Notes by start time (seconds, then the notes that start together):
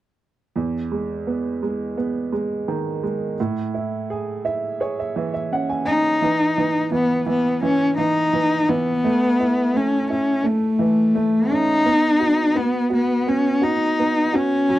0.56 E2
0.92 G#3
1.27 B3
1.63 G#3
1.97 B3
2.32 G#3
2.68 D#3
3.03 G#3
3.40 A2
3.74 E4
4.10 G#4
4.45 E4 E5
4.80 G#4 C#5
4.99 E5
5.16 E3
5.34 E5
5.52 C#4 F#5
5.69 G#5
5.85 D#4 G#5
6.22 E3
6.58 E3
6.92 E3 B3
7.26 E3 B3
7.63 E3 C#4
7.98 E3 D#4
8.33 E3
8.69 E3 B3
9.04 A3
9.40 E4
9.74 A3 C#4
10.10 C#4 E4
10.44 A3
10.79 E3
11.15 A3
11.51 C#4 D#4
11.86 B3
12.20 F#4
12.55 B3
12.90 F#4
12.94 B3
13.27 B3 C#4
13.62 D#4 F#4
13.99 B3
14.33 C#4 F#4
14.69 F#3